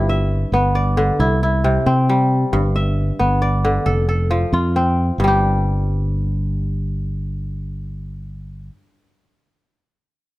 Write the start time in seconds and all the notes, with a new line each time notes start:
Already playing: G1 G2 C4 E4 F4 G4 A4
0.09 E5
0.52 G1 B3
0.75 D5
0.97 D3
1.19 C2 E4
1.43 E4
1.64 C3
1.86 C3 C4
2.09 G3
2.53 G1 G2
2.76 E5
3.19 G1 B3
3.42 D5
3.65 D3
3.86 F1 A4
4.09 A4
4.31 F3
4.53 F2 F4
4.76 C4
5.18 G1 G2
5.24 G3 G4